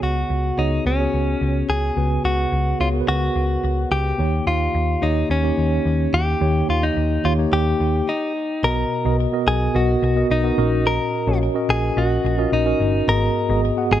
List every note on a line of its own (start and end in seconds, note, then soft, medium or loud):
0.00 0.22 C#2 medium
0.00 0.54 C#3 medium
0.00 0.38 B3 medium
0.00 0.41 F#4 medium
0.00 0.60 F#4 medium
0.00 0.38 G#4 medium
0.00 0.38 C#5 medium
0.30 0.50 C#2 medium
0.57 0.78 C#2 medium
0.57 0.89 B3 medium
0.57 0.86 D#4 medium
0.57 0.90 F#4 medium
0.57 0.90 G#4 medium
0.57 0.90 C#5 medium
0.86 1.06 C#2 medium
0.86 1.72 C#4 medium
0.99 1.74 B3 medium
0.99 1.74 F#4 medium
0.99 1.74 G#4 medium
0.99 1.74 C#5 medium
1.13 1.33 C#2 medium
1.41 1.61 C#2 medium
1.69 1.89 C#2 medium
1.69 2.25 G#4 loud
1.96 2.17 C#2 loud
1.96 2.76 C#3 medium
1.96 2.60 B3 medium
1.96 2.60 F#4 medium
1.96 2.60 G#4 medium
1.96 2.61 B4 medium
2.24 2.45 C#2 loud
2.24 2.80 F#4 loud
2.52 2.72 C#2 loud
2.79 3.00 C#2 loud
2.79 2.90 B3 medium
2.79 2.88 F4 medium
2.79 2.90 F#4 medium
2.79 2.91 G#4 medium
2.79 2.91 C#5 medium
2.93 3.78 B3 medium
2.93 3.78 F#4 medium
2.93 3.79 G#4 medium
2.93 3.01 A#4 medium
3.01 3.82 B4 medium
3.08 3.28 C#2 loud
3.08 3.91 F#4 medium
3.36 3.56 C#2 medium
3.64 3.84 C#2 medium
3.91 4.11 C#2 medium
3.91 4.47 G4 loud
4.18 4.39 D#2 medium
4.18 4.98 D#3 medium
4.18 4.82 A#3 medium
4.18 4.82 D#4 medium
4.18 4.82 G4 medium
4.18 4.83 C#5 medium
4.47 4.67 D#2 loud
4.47 5.04 F4 medium
4.75 4.95 D#2 loud
5.01 5.22 D#2 loud
5.01 5.34 A#3 medium
5.01 5.34 D#4 medium
5.01 5.31 D#4 medium
5.01 5.34 G4 medium
5.01 5.34 C#5 medium
5.30 5.50 D#2 loud
5.30 6.16 C#4 medium
5.43 6.18 A#3 medium
5.43 6.18 D#4 medium
5.43 6.18 G4 medium
5.43 6.18 C#5 medium
5.58 5.78 D#2 medium
5.85 6.06 D#2 medium
6.13 6.33 D#2 medium
6.13 6.70 G4 loud
6.40 6.61 D#2 loud
6.40 7.20 D#3 medium
6.40 7.04 A#3 medium
6.40 7.05 D#4 medium
6.40 7.05 G4 medium
6.40 7.05 C#5 medium
6.69 6.89 D#2 loud
6.69 6.84 F4 medium
6.83 7.26 D#4 medium
6.97 7.17 D#2 medium
7.24 7.44 D#2 medium
7.24 7.35 A#3 medium
7.24 7.35 D#4 medium
7.24 7.32 F4 medium
7.24 7.35 G4 medium
7.24 7.35 C#5 medium
7.38 8.08 A#3 medium
7.38 8.08 D#4 medium
7.38 8.08 G4 medium
7.38 8.08 C#5 medium
7.52 7.72 D#2 loud
7.52 8.32 G4 medium
7.80 8.00 D#2 medium
8.09 8.66 D#4 medium
8.63 8.83 B1 loud
8.63 9.43 B2 medium
8.63 8.95 B3 medium
8.63 8.95 F#4 medium
8.63 8.95 A#4 medium
8.63 9.16 A#4 loud
8.63 8.96 D#5 medium
9.05 9.25 B1 loud
9.05 9.26 B3 medium
9.05 9.26 F#4 medium
9.05 9.26 A#4 medium
9.05 9.27 D#5 medium
9.32 9.64 B3 medium
9.32 9.65 F#4 medium
9.32 9.65 A#4 medium
9.32 9.65 D#5 medium
9.47 9.67 B1 loud
9.47 9.76 G#4 medium
9.74 9.95 B1 loud
9.74 10.06 B3 medium
9.74 10.06 F#4 medium
9.74 10.27 F#4 medium
9.74 10.06 A#4 medium
9.74 10.07 D#5 medium
10.02 10.22 B1 medium
10.16 10.37 B3 medium
10.16 10.37 F#4 medium
10.16 10.38 A#4 medium
10.16 10.38 D#5 medium
10.30 10.50 B1 medium
10.30 10.88 D#4 medium
10.44 10.58 B3 medium
10.44 10.57 F#4 medium
10.44 10.57 A#4 medium
10.44 10.57 D#5 medium
10.57 10.98 A#1 loud
10.57 11.37 A#2 medium
10.57 11.13 C#4 medium
10.57 11.13 F#4 medium
10.57 11.14 A#4 medium
10.57 11.14 D#5 medium
10.87 11.38 A#4 loud
11.27 11.47 A#1 loud
11.27 11.48 C#4 medium
11.27 11.49 F#4 medium
11.27 11.49 A#4 medium
11.27 11.49 C#5 medium
11.54 11.87 C#4 medium
11.54 11.87 F#4 medium
11.54 11.87 A#4 medium
11.54 11.87 D#5 medium
11.69 11.89 A#1 loud
11.69 11.98 G#4 medium
11.96 12.17 A#1 loud
11.96 12.28 C#4 medium
11.96 12.28 F#4 medium
11.96 12.39 F#4 medium
11.96 12.29 A#4 medium
11.96 12.29 D#5 medium
12.24 12.44 A#1 medium
12.38 12.59 C#4 medium
12.38 12.53 F4 medium
12.38 12.60 F#4 medium
12.38 12.60 A#4 medium
12.38 12.60 D#5 medium
12.52 12.72 A#1 medium
12.52 13.10 D#4 medium
12.66 12.98 C#4 medium
12.66 12.98 F#4 medium
12.66 12.98 A#4 medium
12.66 12.98 D#5 medium
12.80 13.00 G1 medium
13.07 13.28 G#1 loud
13.07 13.87 G#2 medium
13.07 13.39 B3 medium
13.07 13.40 F#4 medium
13.07 13.40 G#4 medium
13.07 13.60 A#4 loud
13.07 13.40 D#5 medium
13.49 13.70 G#1 loud
13.49 13.70 B3 medium
13.49 13.71 F#4 medium
13.49 13.71 G#4 medium
13.49 13.71 D#5 medium
13.77 14.00 B3 medium
13.77 14.00 F#4 medium
13.77 14.00 G#4 medium
13.77 14.00 F#5 medium
13.91 14.00 G#1 loud
13.91 14.00 G#4 medium